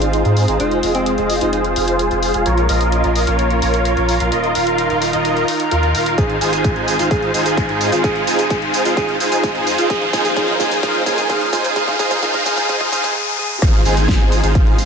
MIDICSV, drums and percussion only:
0, 0, Header, 1, 2, 480
1, 0, Start_track
1, 0, Key_signature, -4, "major"
1, 0, Tempo, 465116
1, 617, Time_signature, 4, 2, 24, 8
1, 15327, End_track
2, 0, Start_track
2, 0, Title_t, "Drums"
2, 18, Note_on_c, 9, 42, 54
2, 121, Note_off_c, 9, 42, 0
2, 138, Note_on_c, 9, 42, 52
2, 241, Note_off_c, 9, 42, 0
2, 258, Note_on_c, 9, 42, 27
2, 361, Note_off_c, 9, 42, 0
2, 378, Note_on_c, 9, 46, 86
2, 481, Note_off_c, 9, 46, 0
2, 498, Note_on_c, 9, 42, 53
2, 601, Note_off_c, 9, 42, 0
2, 617, Note_on_c, 9, 42, 50
2, 721, Note_off_c, 9, 42, 0
2, 737, Note_on_c, 9, 42, 26
2, 840, Note_off_c, 9, 42, 0
2, 857, Note_on_c, 9, 46, 105
2, 961, Note_off_c, 9, 46, 0
2, 977, Note_on_c, 9, 42, 51
2, 1080, Note_off_c, 9, 42, 0
2, 1097, Note_on_c, 9, 42, 51
2, 1201, Note_off_c, 9, 42, 0
2, 1217, Note_on_c, 9, 42, 27
2, 1320, Note_off_c, 9, 42, 0
2, 1337, Note_on_c, 9, 46, 90
2, 1440, Note_off_c, 9, 46, 0
2, 1458, Note_on_c, 9, 42, 51
2, 1561, Note_off_c, 9, 42, 0
2, 1578, Note_on_c, 9, 42, 49
2, 1681, Note_off_c, 9, 42, 0
2, 1698, Note_on_c, 9, 42, 26
2, 1801, Note_off_c, 9, 42, 0
2, 1817, Note_on_c, 9, 46, 102
2, 1921, Note_off_c, 9, 46, 0
2, 1937, Note_on_c, 9, 42, 53
2, 2040, Note_off_c, 9, 42, 0
2, 2057, Note_on_c, 9, 42, 51
2, 2160, Note_off_c, 9, 42, 0
2, 2177, Note_on_c, 9, 42, 26
2, 2280, Note_off_c, 9, 42, 0
2, 2297, Note_on_c, 9, 46, 91
2, 2400, Note_off_c, 9, 46, 0
2, 2417, Note_on_c, 9, 42, 50
2, 2520, Note_off_c, 9, 42, 0
2, 2537, Note_on_c, 9, 42, 51
2, 2640, Note_off_c, 9, 42, 0
2, 2657, Note_on_c, 9, 42, 24
2, 2760, Note_off_c, 9, 42, 0
2, 2776, Note_on_c, 9, 46, 110
2, 2880, Note_off_c, 9, 46, 0
2, 2897, Note_on_c, 9, 42, 50
2, 3000, Note_off_c, 9, 42, 0
2, 3016, Note_on_c, 9, 42, 50
2, 3119, Note_off_c, 9, 42, 0
2, 3137, Note_on_c, 9, 42, 25
2, 3240, Note_off_c, 9, 42, 0
2, 3256, Note_on_c, 9, 46, 97
2, 3359, Note_off_c, 9, 46, 0
2, 3377, Note_on_c, 9, 42, 50
2, 3480, Note_off_c, 9, 42, 0
2, 3497, Note_on_c, 9, 42, 49
2, 3600, Note_off_c, 9, 42, 0
2, 3617, Note_on_c, 9, 42, 25
2, 3720, Note_off_c, 9, 42, 0
2, 3737, Note_on_c, 9, 46, 104
2, 3840, Note_off_c, 9, 46, 0
2, 3857, Note_on_c, 9, 42, 51
2, 3960, Note_off_c, 9, 42, 0
2, 3977, Note_on_c, 9, 42, 49
2, 4080, Note_off_c, 9, 42, 0
2, 4097, Note_on_c, 9, 42, 26
2, 4200, Note_off_c, 9, 42, 0
2, 4217, Note_on_c, 9, 46, 91
2, 4320, Note_off_c, 9, 46, 0
2, 4337, Note_on_c, 9, 42, 49
2, 4441, Note_off_c, 9, 42, 0
2, 4457, Note_on_c, 9, 42, 49
2, 4561, Note_off_c, 9, 42, 0
2, 4577, Note_on_c, 9, 42, 24
2, 4680, Note_off_c, 9, 42, 0
2, 4697, Note_on_c, 9, 46, 113
2, 4800, Note_off_c, 9, 46, 0
2, 4817, Note_on_c, 9, 42, 49
2, 4920, Note_off_c, 9, 42, 0
2, 4937, Note_on_c, 9, 42, 48
2, 5040, Note_off_c, 9, 42, 0
2, 5057, Note_on_c, 9, 42, 25
2, 5161, Note_off_c, 9, 42, 0
2, 5177, Note_on_c, 9, 46, 95
2, 5280, Note_off_c, 9, 46, 0
2, 5297, Note_on_c, 9, 42, 48
2, 5400, Note_off_c, 9, 42, 0
2, 5417, Note_on_c, 9, 42, 48
2, 5520, Note_off_c, 9, 42, 0
2, 5537, Note_on_c, 9, 42, 25
2, 5640, Note_off_c, 9, 42, 0
2, 5657, Note_on_c, 9, 46, 106
2, 5760, Note_off_c, 9, 46, 0
2, 5777, Note_on_c, 9, 42, 50
2, 5880, Note_off_c, 9, 42, 0
2, 5897, Note_on_c, 9, 42, 51
2, 6000, Note_off_c, 9, 42, 0
2, 6017, Note_on_c, 9, 42, 25
2, 6120, Note_off_c, 9, 42, 0
2, 6137, Note_on_c, 9, 46, 91
2, 6240, Note_off_c, 9, 46, 0
2, 6257, Note_on_c, 9, 42, 47
2, 6360, Note_off_c, 9, 42, 0
2, 6377, Note_on_c, 9, 36, 104
2, 6377, Note_on_c, 9, 42, 49
2, 6381, Note_on_c, 9, 54, 33
2, 6480, Note_off_c, 9, 36, 0
2, 6480, Note_off_c, 9, 42, 0
2, 6484, Note_off_c, 9, 54, 0
2, 6497, Note_on_c, 9, 42, 25
2, 6601, Note_off_c, 9, 42, 0
2, 6617, Note_on_c, 9, 46, 104
2, 6621, Note_on_c, 9, 54, 77
2, 6720, Note_off_c, 9, 46, 0
2, 6724, Note_off_c, 9, 54, 0
2, 6737, Note_on_c, 9, 42, 51
2, 6741, Note_on_c, 9, 54, 45
2, 6841, Note_off_c, 9, 42, 0
2, 6845, Note_off_c, 9, 54, 0
2, 6857, Note_on_c, 9, 36, 99
2, 6857, Note_on_c, 9, 42, 52
2, 6861, Note_on_c, 9, 54, 33
2, 6960, Note_off_c, 9, 36, 0
2, 6960, Note_off_c, 9, 42, 0
2, 6964, Note_off_c, 9, 54, 0
2, 6977, Note_on_c, 9, 42, 25
2, 7080, Note_off_c, 9, 42, 0
2, 7097, Note_on_c, 9, 46, 94
2, 7101, Note_on_c, 9, 54, 75
2, 7200, Note_off_c, 9, 46, 0
2, 7204, Note_off_c, 9, 54, 0
2, 7217, Note_on_c, 9, 42, 47
2, 7221, Note_on_c, 9, 54, 45
2, 7320, Note_off_c, 9, 42, 0
2, 7324, Note_off_c, 9, 54, 0
2, 7337, Note_on_c, 9, 36, 105
2, 7337, Note_on_c, 9, 42, 49
2, 7341, Note_on_c, 9, 54, 31
2, 7440, Note_off_c, 9, 36, 0
2, 7440, Note_off_c, 9, 42, 0
2, 7444, Note_off_c, 9, 54, 0
2, 7457, Note_on_c, 9, 42, 26
2, 7560, Note_off_c, 9, 42, 0
2, 7576, Note_on_c, 9, 46, 99
2, 7580, Note_on_c, 9, 54, 77
2, 7680, Note_off_c, 9, 46, 0
2, 7684, Note_off_c, 9, 54, 0
2, 7696, Note_on_c, 9, 42, 51
2, 7700, Note_on_c, 9, 54, 46
2, 7800, Note_off_c, 9, 42, 0
2, 7804, Note_off_c, 9, 54, 0
2, 7817, Note_on_c, 9, 36, 103
2, 7817, Note_on_c, 9, 42, 50
2, 7821, Note_on_c, 9, 54, 34
2, 7920, Note_off_c, 9, 36, 0
2, 7920, Note_off_c, 9, 42, 0
2, 7924, Note_off_c, 9, 54, 0
2, 7937, Note_on_c, 9, 42, 26
2, 8040, Note_off_c, 9, 42, 0
2, 8057, Note_on_c, 9, 46, 88
2, 8061, Note_on_c, 9, 54, 78
2, 8160, Note_off_c, 9, 46, 0
2, 8164, Note_off_c, 9, 54, 0
2, 8177, Note_on_c, 9, 42, 49
2, 8181, Note_on_c, 9, 54, 45
2, 8280, Note_off_c, 9, 42, 0
2, 8284, Note_off_c, 9, 54, 0
2, 8297, Note_on_c, 9, 36, 103
2, 8297, Note_on_c, 9, 42, 50
2, 8301, Note_on_c, 9, 54, 35
2, 8400, Note_off_c, 9, 36, 0
2, 8400, Note_off_c, 9, 42, 0
2, 8404, Note_off_c, 9, 54, 0
2, 8417, Note_on_c, 9, 42, 26
2, 8520, Note_off_c, 9, 42, 0
2, 8537, Note_on_c, 9, 46, 107
2, 8541, Note_on_c, 9, 54, 82
2, 8640, Note_off_c, 9, 46, 0
2, 8644, Note_off_c, 9, 54, 0
2, 8657, Note_on_c, 9, 42, 51
2, 8661, Note_on_c, 9, 54, 45
2, 8760, Note_off_c, 9, 42, 0
2, 8764, Note_off_c, 9, 54, 0
2, 8776, Note_on_c, 9, 42, 52
2, 8777, Note_on_c, 9, 36, 102
2, 8781, Note_on_c, 9, 54, 35
2, 8880, Note_off_c, 9, 36, 0
2, 8880, Note_off_c, 9, 42, 0
2, 8884, Note_off_c, 9, 54, 0
2, 8897, Note_on_c, 9, 42, 27
2, 9000, Note_off_c, 9, 42, 0
2, 9017, Note_on_c, 9, 46, 91
2, 9021, Note_on_c, 9, 54, 81
2, 9120, Note_off_c, 9, 46, 0
2, 9124, Note_off_c, 9, 54, 0
2, 9137, Note_on_c, 9, 42, 51
2, 9141, Note_on_c, 9, 54, 46
2, 9240, Note_off_c, 9, 42, 0
2, 9244, Note_off_c, 9, 54, 0
2, 9257, Note_on_c, 9, 36, 108
2, 9257, Note_on_c, 9, 42, 49
2, 9261, Note_on_c, 9, 54, 33
2, 9360, Note_off_c, 9, 36, 0
2, 9360, Note_off_c, 9, 42, 0
2, 9364, Note_off_c, 9, 54, 0
2, 9377, Note_on_c, 9, 42, 27
2, 9481, Note_off_c, 9, 42, 0
2, 9497, Note_on_c, 9, 46, 98
2, 9501, Note_on_c, 9, 54, 77
2, 9601, Note_off_c, 9, 46, 0
2, 9605, Note_off_c, 9, 54, 0
2, 9618, Note_on_c, 9, 42, 52
2, 9622, Note_on_c, 9, 54, 48
2, 9721, Note_off_c, 9, 42, 0
2, 9725, Note_off_c, 9, 54, 0
2, 9737, Note_on_c, 9, 36, 103
2, 9738, Note_on_c, 9, 42, 54
2, 9742, Note_on_c, 9, 54, 35
2, 9840, Note_off_c, 9, 36, 0
2, 9841, Note_off_c, 9, 42, 0
2, 9845, Note_off_c, 9, 54, 0
2, 9857, Note_on_c, 9, 42, 27
2, 9960, Note_off_c, 9, 42, 0
2, 9977, Note_on_c, 9, 46, 88
2, 9981, Note_on_c, 9, 54, 81
2, 10080, Note_off_c, 9, 46, 0
2, 10085, Note_off_c, 9, 54, 0
2, 10097, Note_on_c, 9, 42, 52
2, 10101, Note_on_c, 9, 54, 46
2, 10200, Note_off_c, 9, 42, 0
2, 10204, Note_off_c, 9, 54, 0
2, 10217, Note_on_c, 9, 36, 105
2, 10217, Note_on_c, 9, 42, 51
2, 10221, Note_on_c, 9, 54, 35
2, 10320, Note_off_c, 9, 36, 0
2, 10320, Note_off_c, 9, 42, 0
2, 10324, Note_off_c, 9, 54, 0
2, 10337, Note_on_c, 9, 42, 26
2, 10440, Note_off_c, 9, 42, 0
2, 10457, Note_on_c, 9, 36, 110
2, 10457, Note_on_c, 9, 46, 102
2, 10461, Note_on_c, 9, 54, 83
2, 10560, Note_off_c, 9, 36, 0
2, 10560, Note_off_c, 9, 46, 0
2, 10565, Note_off_c, 9, 54, 0
2, 10577, Note_on_c, 9, 42, 55
2, 10581, Note_on_c, 9, 54, 47
2, 10680, Note_off_c, 9, 42, 0
2, 10684, Note_off_c, 9, 54, 0
2, 10697, Note_on_c, 9, 36, 105
2, 10697, Note_on_c, 9, 42, 53
2, 10702, Note_on_c, 9, 54, 36
2, 10800, Note_off_c, 9, 36, 0
2, 10801, Note_off_c, 9, 42, 0
2, 10805, Note_off_c, 9, 54, 0
2, 10817, Note_on_c, 9, 42, 27
2, 10920, Note_off_c, 9, 42, 0
2, 10937, Note_on_c, 9, 36, 107
2, 10937, Note_on_c, 9, 46, 85
2, 10942, Note_on_c, 9, 54, 81
2, 11040, Note_off_c, 9, 36, 0
2, 11041, Note_off_c, 9, 46, 0
2, 11045, Note_off_c, 9, 54, 0
2, 11057, Note_on_c, 9, 42, 54
2, 11061, Note_on_c, 9, 54, 48
2, 11160, Note_off_c, 9, 42, 0
2, 11164, Note_off_c, 9, 54, 0
2, 11177, Note_on_c, 9, 36, 109
2, 11177, Note_on_c, 9, 42, 54
2, 11181, Note_on_c, 9, 54, 35
2, 11280, Note_off_c, 9, 36, 0
2, 11281, Note_off_c, 9, 42, 0
2, 11285, Note_off_c, 9, 54, 0
2, 11297, Note_on_c, 9, 42, 29
2, 11401, Note_off_c, 9, 42, 0
2, 11417, Note_on_c, 9, 36, 106
2, 11417, Note_on_c, 9, 46, 97
2, 11421, Note_on_c, 9, 54, 82
2, 11520, Note_off_c, 9, 36, 0
2, 11520, Note_off_c, 9, 46, 0
2, 11524, Note_off_c, 9, 54, 0
2, 11537, Note_on_c, 9, 42, 57
2, 11541, Note_on_c, 9, 54, 49
2, 11640, Note_off_c, 9, 42, 0
2, 11644, Note_off_c, 9, 54, 0
2, 11657, Note_on_c, 9, 36, 103
2, 11657, Note_on_c, 9, 42, 55
2, 11661, Note_on_c, 9, 54, 36
2, 11760, Note_off_c, 9, 36, 0
2, 11760, Note_off_c, 9, 42, 0
2, 11764, Note_off_c, 9, 54, 0
2, 11777, Note_on_c, 9, 42, 28
2, 11880, Note_off_c, 9, 42, 0
2, 11896, Note_on_c, 9, 46, 87
2, 11897, Note_on_c, 9, 36, 113
2, 11901, Note_on_c, 9, 54, 84
2, 12000, Note_off_c, 9, 36, 0
2, 12000, Note_off_c, 9, 46, 0
2, 12004, Note_off_c, 9, 54, 0
2, 12017, Note_on_c, 9, 42, 54
2, 12021, Note_on_c, 9, 54, 48
2, 12120, Note_off_c, 9, 42, 0
2, 12124, Note_off_c, 9, 54, 0
2, 12137, Note_on_c, 9, 36, 103
2, 12137, Note_on_c, 9, 42, 58
2, 12141, Note_on_c, 9, 54, 35
2, 12240, Note_off_c, 9, 36, 0
2, 12240, Note_off_c, 9, 42, 0
2, 12244, Note_off_c, 9, 54, 0
2, 12257, Note_on_c, 9, 36, 92
2, 12257, Note_on_c, 9, 42, 27
2, 12360, Note_off_c, 9, 36, 0
2, 12360, Note_off_c, 9, 42, 0
2, 12376, Note_on_c, 9, 46, 107
2, 12377, Note_on_c, 9, 36, 111
2, 12380, Note_on_c, 9, 54, 84
2, 12480, Note_off_c, 9, 36, 0
2, 12480, Note_off_c, 9, 46, 0
2, 12484, Note_off_c, 9, 54, 0
2, 12496, Note_on_c, 9, 42, 56
2, 12497, Note_on_c, 9, 36, 93
2, 12500, Note_on_c, 9, 54, 45
2, 12600, Note_off_c, 9, 36, 0
2, 12600, Note_off_c, 9, 42, 0
2, 12604, Note_off_c, 9, 54, 0
2, 12617, Note_on_c, 9, 36, 104
2, 12617, Note_on_c, 9, 42, 57
2, 12621, Note_on_c, 9, 54, 37
2, 12720, Note_off_c, 9, 36, 0
2, 12720, Note_off_c, 9, 42, 0
2, 12724, Note_off_c, 9, 54, 0
2, 12737, Note_on_c, 9, 36, 94
2, 12737, Note_on_c, 9, 42, 27
2, 12840, Note_off_c, 9, 36, 0
2, 12840, Note_off_c, 9, 42, 0
2, 12857, Note_on_c, 9, 36, 107
2, 12857, Note_on_c, 9, 46, 91
2, 12861, Note_on_c, 9, 54, 83
2, 12960, Note_off_c, 9, 36, 0
2, 12960, Note_off_c, 9, 46, 0
2, 12964, Note_off_c, 9, 54, 0
2, 12977, Note_on_c, 9, 36, 92
2, 12977, Note_on_c, 9, 42, 54
2, 12981, Note_on_c, 9, 54, 46
2, 13080, Note_off_c, 9, 36, 0
2, 13081, Note_off_c, 9, 42, 0
2, 13085, Note_off_c, 9, 54, 0
2, 13096, Note_on_c, 9, 36, 109
2, 13098, Note_on_c, 9, 42, 51
2, 13102, Note_on_c, 9, 54, 34
2, 13200, Note_off_c, 9, 36, 0
2, 13201, Note_off_c, 9, 42, 0
2, 13205, Note_off_c, 9, 54, 0
2, 13216, Note_on_c, 9, 36, 91
2, 13218, Note_on_c, 9, 42, 29
2, 13320, Note_off_c, 9, 36, 0
2, 13321, Note_off_c, 9, 42, 0
2, 13336, Note_on_c, 9, 36, 106
2, 13338, Note_on_c, 9, 46, 97
2, 13342, Note_on_c, 9, 54, 82
2, 13440, Note_off_c, 9, 36, 0
2, 13441, Note_off_c, 9, 46, 0
2, 13445, Note_off_c, 9, 54, 0
2, 13456, Note_on_c, 9, 36, 92
2, 13457, Note_on_c, 9, 42, 58
2, 13461, Note_on_c, 9, 54, 48
2, 13559, Note_off_c, 9, 36, 0
2, 13561, Note_off_c, 9, 42, 0
2, 13565, Note_off_c, 9, 54, 0
2, 14057, Note_on_c, 9, 36, 118
2, 14058, Note_on_c, 9, 37, 63
2, 14058, Note_on_c, 9, 42, 55
2, 14058, Note_on_c, 9, 49, 103
2, 14062, Note_on_c, 9, 54, 33
2, 14160, Note_off_c, 9, 36, 0
2, 14161, Note_off_c, 9, 37, 0
2, 14161, Note_off_c, 9, 42, 0
2, 14161, Note_off_c, 9, 49, 0
2, 14165, Note_off_c, 9, 54, 0
2, 14178, Note_on_c, 9, 42, 26
2, 14281, Note_off_c, 9, 42, 0
2, 14297, Note_on_c, 9, 46, 103
2, 14301, Note_on_c, 9, 54, 79
2, 14401, Note_off_c, 9, 46, 0
2, 14405, Note_off_c, 9, 54, 0
2, 14417, Note_on_c, 9, 42, 57
2, 14422, Note_on_c, 9, 54, 44
2, 14521, Note_off_c, 9, 42, 0
2, 14525, Note_off_c, 9, 54, 0
2, 14535, Note_on_c, 9, 38, 127
2, 14537, Note_on_c, 9, 36, 117
2, 14537, Note_on_c, 9, 42, 56
2, 14541, Note_on_c, 9, 54, 34
2, 14638, Note_off_c, 9, 38, 0
2, 14640, Note_off_c, 9, 36, 0
2, 14640, Note_off_c, 9, 42, 0
2, 14644, Note_off_c, 9, 54, 0
2, 14657, Note_on_c, 9, 42, 28
2, 14760, Note_off_c, 9, 42, 0
2, 14777, Note_on_c, 9, 46, 95
2, 14782, Note_on_c, 9, 54, 80
2, 14881, Note_off_c, 9, 46, 0
2, 14885, Note_off_c, 9, 54, 0
2, 14898, Note_on_c, 9, 42, 54
2, 14902, Note_on_c, 9, 54, 44
2, 15001, Note_off_c, 9, 42, 0
2, 15005, Note_off_c, 9, 54, 0
2, 15017, Note_on_c, 9, 36, 125
2, 15018, Note_on_c, 9, 42, 53
2, 15022, Note_on_c, 9, 54, 32
2, 15120, Note_off_c, 9, 36, 0
2, 15121, Note_off_c, 9, 42, 0
2, 15125, Note_off_c, 9, 54, 0
2, 15138, Note_on_c, 9, 42, 29
2, 15241, Note_off_c, 9, 42, 0
2, 15257, Note_on_c, 9, 46, 100
2, 15261, Note_on_c, 9, 54, 75
2, 15327, Note_off_c, 9, 46, 0
2, 15327, Note_off_c, 9, 54, 0
2, 15327, End_track
0, 0, End_of_file